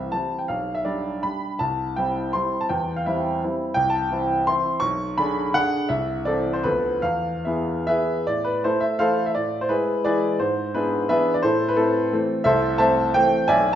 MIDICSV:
0, 0, Header, 1, 2, 480
1, 0, Start_track
1, 0, Key_signature, 0, "major"
1, 0, Tempo, 371747
1, 622, Time_signature, 3, 2, 24, 8
1, 3029, Tempo, 350263
1, 4946, Key_signature, 0, "minor"
1, 5429, Tempo, 359497
1, 8309, Tempo, 389610
1, 9269, Tempo, 411805
1, 10709, Tempo, 369458
1, 11669, Tempo, 344630
1, 18275, End_track
2, 0, Start_track
2, 0, Title_t, "Grand piano"
2, 0, Program_c, 0, 0
2, 0, Control_c, 0, 64, 127
2, 0, Note_on_c, 0, 36, 58
2, 0, Note_on_c, 0, 52, 50
2, 0, Note_on_c, 0, 55, 49
2, 0, Note_on_c, 0, 60, 51
2, 0, Note_on_c, 0, 76, 79
2, 0, Note_on_c, 0, 77, 66
2, 148, Note_off_c, 0, 76, 0
2, 152, Note_on_c, 0, 81, 88
2, 160, Note_off_c, 0, 52, 0
2, 160, Note_on_c, 0, 52, 46
2, 162, Control_c, 0, 64, 0
2, 166, Note_off_c, 0, 55, 0
2, 166, Note_on_c, 0, 55, 46
2, 174, Note_off_c, 0, 77, 0
2, 177, Note_off_c, 0, 60, 0
2, 178, Note_off_c, 0, 36, 0
2, 178, Note_on_c, 0, 60, 47
2, 499, Note_on_c, 0, 79, 60
2, 507, Note_off_c, 0, 81, 0
2, 580, Note_off_c, 0, 52, 0
2, 583, Note_off_c, 0, 55, 0
2, 590, Note_off_c, 0, 60, 0
2, 618, Note_off_c, 0, 79, 0
2, 623, Note_on_c, 0, 77, 79
2, 636, Note_on_c, 0, 35, 59
2, 890, Control_c, 0, 64, 127
2, 963, Note_on_c, 0, 76, 76
2, 979, Note_off_c, 0, 77, 0
2, 1094, Note_on_c, 0, 74, 75
2, 1096, Note_off_c, 0, 76, 0
2, 1097, Note_off_c, 0, 35, 0
2, 1103, Note_on_c, 0, 62, 52
2, 1107, Note_on_c, 0, 55, 50
2, 1543, Note_off_c, 0, 62, 0
2, 1546, Note_off_c, 0, 55, 0
2, 1587, Note_on_c, 0, 83, 86
2, 1588, Note_off_c, 0, 74, 0
2, 1596, Note_on_c, 0, 55, 45
2, 1604, Control_c, 0, 64, 0
2, 1607, Note_on_c, 0, 62, 51
2, 2023, Note_off_c, 0, 55, 0
2, 2029, Note_off_c, 0, 62, 0
2, 2056, Note_on_c, 0, 81, 86
2, 2066, Note_off_c, 0, 83, 0
2, 2070, Note_on_c, 0, 36, 58
2, 2346, Control_c, 0, 64, 127
2, 2536, Note_on_c, 0, 79, 81
2, 2537, Note_off_c, 0, 36, 0
2, 2544, Note_off_c, 0, 81, 0
2, 2555, Note_on_c, 0, 55, 50
2, 2560, Note_on_c, 0, 64, 54
2, 2564, Note_on_c, 0, 60, 50
2, 2984, Note_off_c, 0, 55, 0
2, 2986, Note_off_c, 0, 64, 0
2, 2988, Note_off_c, 0, 60, 0
2, 3008, Note_on_c, 0, 84, 94
2, 3022, Note_off_c, 0, 79, 0
2, 3028, Note_on_c, 0, 55, 47
2, 3030, Note_on_c, 0, 60, 46
2, 3032, Note_on_c, 0, 64, 53
2, 3041, Control_c, 0, 64, 0
2, 3372, Note_off_c, 0, 84, 0
2, 3387, Note_on_c, 0, 81, 82
2, 3451, Note_off_c, 0, 55, 0
2, 3452, Note_off_c, 0, 60, 0
2, 3453, Note_off_c, 0, 64, 0
2, 3500, Note_off_c, 0, 81, 0
2, 3504, Note_on_c, 0, 79, 78
2, 3516, Note_on_c, 0, 40, 66
2, 3774, Control_c, 0, 64, 127
2, 3863, Note_off_c, 0, 79, 0
2, 3877, Note_on_c, 0, 77, 76
2, 3983, Note_off_c, 0, 40, 0
2, 3997, Note_off_c, 0, 77, 0
2, 4009, Note_on_c, 0, 76, 74
2, 4018, Note_on_c, 0, 55, 55
2, 4027, Note_on_c, 0, 64, 61
2, 4028, Note_on_c, 0, 60, 53
2, 4450, Note_off_c, 0, 55, 0
2, 4454, Note_off_c, 0, 64, 0
2, 4455, Note_off_c, 0, 60, 0
2, 4493, Note_off_c, 0, 76, 0
2, 4501, Control_c, 0, 64, 0
2, 4527, Note_on_c, 0, 55, 49
2, 4531, Note_on_c, 0, 60, 52
2, 4534, Note_on_c, 0, 64, 57
2, 4925, Note_off_c, 0, 55, 0
2, 4927, Note_off_c, 0, 60, 0
2, 4929, Note_off_c, 0, 64, 0
2, 4945, Note_on_c, 0, 79, 113
2, 4971, Note_on_c, 0, 36, 69
2, 5156, Note_on_c, 0, 81, 92
2, 5178, Control_c, 0, 64, 127
2, 5179, Note_off_c, 0, 79, 0
2, 5426, Note_off_c, 0, 36, 0
2, 5445, Note_on_c, 0, 52, 59
2, 5460, Note_on_c, 0, 60, 56
2, 5465, Note_on_c, 0, 64, 62
2, 5880, Note_off_c, 0, 52, 0
2, 5888, Note_off_c, 0, 60, 0
2, 5890, Note_off_c, 0, 64, 0
2, 5908, Note_off_c, 0, 81, 0
2, 5927, Note_on_c, 0, 84, 110
2, 5939, Control_c, 0, 64, 0
2, 5946, Note_on_c, 0, 52, 55
2, 5946, Note_on_c, 0, 64, 62
2, 5951, Note_on_c, 0, 60, 59
2, 6355, Note_off_c, 0, 52, 0
2, 6355, Note_off_c, 0, 64, 0
2, 6358, Note_off_c, 0, 60, 0
2, 6364, Note_on_c, 0, 85, 104
2, 6380, Note_on_c, 0, 35, 72
2, 6391, Note_off_c, 0, 84, 0
2, 6662, Control_c, 0, 64, 127
2, 6851, Note_off_c, 0, 35, 0
2, 6858, Note_off_c, 0, 85, 0
2, 6869, Note_on_c, 0, 83, 105
2, 6874, Note_on_c, 0, 50, 61
2, 6882, Note_on_c, 0, 68, 71
2, 6889, Note_on_c, 0, 62, 65
2, 7313, Note_off_c, 0, 50, 0
2, 7317, Note_off_c, 0, 68, 0
2, 7321, Note_off_c, 0, 62, 0
2, 7358, Note_on_c, 0, 78, 111
2, 7359, Note_off_c, 0, 83, 0
2, 7363, Note_on_c, 0, 50, 60
2, 7373, Note_on_c, 0, 62, 61
2, 7379, Control_c, 0, 64, 0
2, 7381, Note_on_c, 0, 68, 65
2, 7782, Note_off_c, 0, 50, 0
2, 7787, Note_off_c, 0, 62, 0
2, 7792, Note_off_c, 0, 68, 0
2, 7819, Note_on_c, 0, 76, 88
2, 7826, Note_off_c, 0, 78, 0
2, 7829, Note_on_c, 0, 36, 72
2, 8076, Control_c, 0, 64, 127
2, 8296, Note_off_c, 0, 36, 0
2, 8306, Note_off_c, 0, 76, 0
2, 8308, Note_on_c, 0, 74, 92
2, 8317, Note_on_c, 0, 52, 61
2, 8325, Note_on_c, 0, 60, 62
2, 8329, Note_on_c, 0, 69, 65
2, 8653, Note_on_c, 0, 72, 83
2, 8664, Note_off_c, 0, 74, 0
2, 8740, Note_off_c, 0, 52, 0
2, 8744, Note_off_c, 0, 60, 0
2, 8747, Note_off_c, 0, 69, 0
2, 8778, Note_off_c, 0, 72, 0
2, 8778, Note_on_c, 0, 71, 95
2, 8788, Note_on_c, 0, 38, 71
2, 8791, Note_on_c, 0, 53, 53
2, 8793, Note_on_c, 0, 59, 54
2, 8797, Control_c, 0, 64, 0
2, 8801, Note_on_c, 0, 69, 53
2, 9036, Control_c, 0, 64, 127
2, 9224, Note_off_c, 0, 53, 0
2, 9225, Note_off_c, 0, 59, 0
2, 9229, Note_off_c, 0, 69, 0
2, 9254, Note_on_c, 0, 77, 94
2, 9256, Note_off_c, 0, 38, 0
2, 9264, Note_on_c, 0, 40, 65
2, 9265, Note_off_c, 0, 71, 0
2, 9279, Control_c, 0, 64, 0
2, 9496, Control_c, 0, 64, 127
2, 9739, Note_off_c, 0, 40, 0
2, 9749, Note_off_c, 0, 77, 0
2, 9752, Note_on_c, 0, 76, 63
2, 9769, Note_on_c, 0, 59, 57
2, 9773, Note_on_c, 0, 52, 53
2, 9778, Note_on_c, 0, 68, 58
2, 10204, Note_off_c, 0, 59, 0
2, 10206, Note_off_c, 0, 52, 0
2, 10209, Note_off_c, 0, 68, 0
2, 10224, Note_off_c, 0, 76, 0
2, 10242, Note_on_c, 0, 76, 102
2, 10256, Note_on_c, 0, 59, 50
2, 10258, Note_on_c, 0, 52, 46
2, 10260, Note_on_c, 0, 71, 71
2, 10262, Note_on_c, 0, 68, 74
2, 10265, Control_c, 0, 64, 0
2, 10668, Note_off_c, 0, 59, 0
2, 10669, Note_off_c, 0, 52, 0
2, 10678, Note_off_c, 0, 68, 0
2, 10684, Note_off_c, 0, 71, 0
2, 10707, Note_off_c, 0, 76, 0
2, 10709, Note_on_c, 0, 74, 101
2, 10723, Note_on_c, 0, 45, 63
2, 10938, Note_on_c, 0, 71, 88
2, 10945, Note_off_c, 0, 74, 0
2, 10950, Control_c, 0, 64, 127
2, 11182, Note_off_c, 0, 45, 0
2, 11186, Note_off_c, 0, 71, 0
2, 11195, Note_on_c, 0, 72, 90
2, 11200, Note_on_c, 0, 57, 50
2, 11202, Note_on_c, 0, 64, 71
2, 11203, Control_c, 0, 64, 0
2, 11207, Note_on_c, 0, 69, 64
2, 11405, Note_on_c, 0, 76, 87
2, 11423, Note_off_c, 0, 64, 0
2, 11426, Note_off_c, 0, 69, 0
2, 11436, Note_off_c, 0, 72, 0
2, 11627, Note_off_c, 0, 57, 0
2, 11645, Note_on_c, 0, 77, 109
2, 11654, Note_off_c, 0, 76, 0
2, 11656, Note_on_c, 0, 57, 60
2, 11656, Note_on_c, 0, 72, 78
2, 11664, Note_on_c, 0, 52, 61
2, 11664, Note_on_c, 0, 69, 81
2, 11667, Note_on_c, 0, 64, 67
2, 11998, Note_off_c, 0, 72, 0
2, 12003, Note_off_c, 0, 69, 0
2, 12018, Note_off_c, 0, 77, 0
2, 12022, Note_on_c, 0, 76, 76
2, 12091, Note_off_c, 0, 57, 0
2, 12096, Note_off_c, 0, 52, 0
2, 12098, Note_off_c, 0, 64, 0
2, 12141, Note_on_c, 0, 74, 95
2, 12143, Note_off_c, 0, 76, 0
2, 12150, Note_on_c, 0, 45, 61
2, 12395, Control_c, 0, 64, 127
2, 12504, Note_off_c, 0, 74, 0
2, 12511, Note_on_c, 0, 72, 80
2, 12620, Note_on_c, 0, 71, 90
2, 12622, Note_off_c, 0, 45, 0
2, 12629, Note_on_c, 0, 56, 50
2, 12631, Note_on_c, 0, 64, 66
2, 12634, Note_on_c, 0, 68, 68
2, 12637, Note_off_c, 0, 72, 0
2, 12646, Control_c, 0, 64, 0
2, 13089, Note_off_c, 0, 56, 0
2, 13105, Note_off_c, 0, 64, 0
2, 13105, Note_off_c, 0, 68, 0
2, 13105, Note_off_c, 0, 71, 0
2, 13115, Note_on_c, 0, 74, 106
2, 13126, Note_on_c, 0, 68, 84
2, 13126, Note_on_c, 0, 71, 78
2, 13131, Note_on_c, 0, 52, 61
2, 13131, Note_on_c, 0, 56, 60
2, 13133, Note_on_c, 0, 64, 69
2, 13567, Note_off_c, 0, 52, 0
2, 13567, Note_off_c, 0, 56, 0
2, 13568, Note_off_c, 0, 64, 0
2, 13578, Note_off_c, 0, 71, 0
2, 13579, Note_off_c, 0, 68, 0
2, 13601, Note_on_c, 0, 72, 81
2, 13607, Note_off_c, 0, 74, 0
2, 13614, Note_on_c, 0, 44, 68
2, 13902, Control_c, 0, 64, 127
2, 14075, Note_off_c, 0, 44, 0
2, 14083, Note_off_c, 0, 72, 0
2, 14089, Note_on_c, 0, 71, 92
2, 14091, Note_on_c, 0, 59, 52
2, 14099, Note_on_c, 0, 64, 67
2, 14102, Note_on_c, 0, 62, 59
2, 14107, Note_on_c, 0, 68, 71
2, 14519, Note_off_c, 0, 59, 0
2, 14525, Note_off_c, 0, 62, 0
2, 14537, Note_off_c, 0, 64, 0
2, 14542, Note_off_c, 0, 68, 0
2, 14561, Note_off_c, 0, 71, 0
2, 14571, Note_on_c, 0, 68, 79
2, 14571, Note_on_c, 0, 76, 106
2, 14580, Note_on_c, 0, 52, 66
2, 14582, Note_on_c, 0, 71, 88
2, 14585, Control_c, 0, 64, 0
2, 14585, Note_on_c, 0, 59, 64
2, 14592, Note_on_c, 0, 62, 72
2, 14897, Note_off_c, 0, 68, 0
2, 14902, Note_off_c, 0, 71, 0
2, 14919, Note_on_c, 0, 74, 93
2, 14921, Note_off_c, 0, 76, 0
2, 14995, Note_off_c, 0, 52, 0
2, 14998, Note_off_c, 0, 59, 0
2, 15002, Note_off_c, 0, 62, 0
2, 15035, Note_off_c, 0, 74, 0
2, 15036, Note_on_c, 0, 72, 100
2, 15045, Note_on_c, 0, 45, 77
2, 15053, Note_on_c, 0, 64, 80
2, 15055, Note_on_c, 0, 69, 73
2, 15290, Control_c, 0, 64, 127
2, 15376, Note_off_c, 0, 64, 0
2, 15377, Note_off_c, 0, 69, 0
2, 15392, Note_off_c, 0, 72, 0
2, 15397, Note_on_c, 0, 71, 95
2, 15508, Note_off_c, 0, 45, 0
2, 15509, Note_on_c, 0, 69, 91
2, 15520, Note_off_c, 0, 71, 0
2, 15522, Note_on_c, 0, 57, 60
2, 15526, Note_on_c, 0, 64, 74
2, 15529, Note_on_c, 0, 60, 69
2, 15963, Note_off_c, 0, 57, 0
2, 15980, Note_off_c, 0, 64, 0
2, 15981, Note_off_c, 0, 60, 0
2, 16006, Note_off_c, 0, 69, 0
2, 16011, Note_on_c, 0, 57, 74
2, 16015, Note_on_c, 0, 52, 71
2, 16020, Note_on_c, 0, 60, 74
2, 16027, Control_c, 0, 64, 0
2, 16425, Note_off_c, 0, 57, 0
2, 16427, Note_off_c, 0, 52, 0
2, 16430, Note_off_c, 0, 60, 0
2, 16451, Note_on_c, 0, 76, 115
2, 16463, Note_on_c, 0, 36, 80
2, 16469, Note_on_c, 0, 69, 90
2, 16481, Note_on_c, 0, 72, 91
2, 16717, Control_c, 0, 64, 127
2, 16910, Note_off_c, 0, 69, 0
2, 16917, Note_off_c, 0, 72, 0
2, 16921, Note_off_c, 0, 76, 0
2, 16926, Note_off_c, 0, 36, 0
2, 16927, Note_on_c, 0, 81, 117
2, 16936, Note_on_c, 0, 57, 64
2, 16940, Note_on_c, 0, 72, 90
2, 16942, Note_on_c, 0, 76, 94
2, 16945, Note_on_c, 0, 60, 64
2, 17383, Note_off_c, 0, 57, 0
2, 17388, Note_off_c, 0, 60, 0
2, 17400, Note_off_c, 0, 72, 0
2, 17402, Note_off_c, 0, 76, 0
2, 17429, Note_off_c, 0, 81, 0
2, 17429, Note_on_c, 0, 79, 127
2, 17436, Note_on_c, 0, 52, 77
2, 17444, Note_on_c, 0, 57, 78
2, 17448, Note_on_c, 0, 60, 86
2, 17453, Control_c, 0, 64, 0
2, 17860, Note_off_c, 0, 52, 0
2, 17865, Note_off_c, 0, 57, 0
2, 17867, Note_off_c, 0, 60, 0
2, 17895, Note_on_c, 0, 80, 127
2, 17904, Note_off_c, 0, 79, 0
2, 17905, Note_on_c, 0, 74, 99
2, 17909, Note_on_c, 0, 76, 98
2, 17914, Note_on_c, 0, 35, 85
2, 18174, Control_c, 0, 64, 127
2, 18243, Note_off_c, 0, 74, 0
2, 18244, Note_off_c, 0, 76, 0
2, 18263, Note_off_c, 0, 80, 0
2, 18275, Note_off_c, 0, 35, 0
2, 18275, End_track
0, 0, End_of_file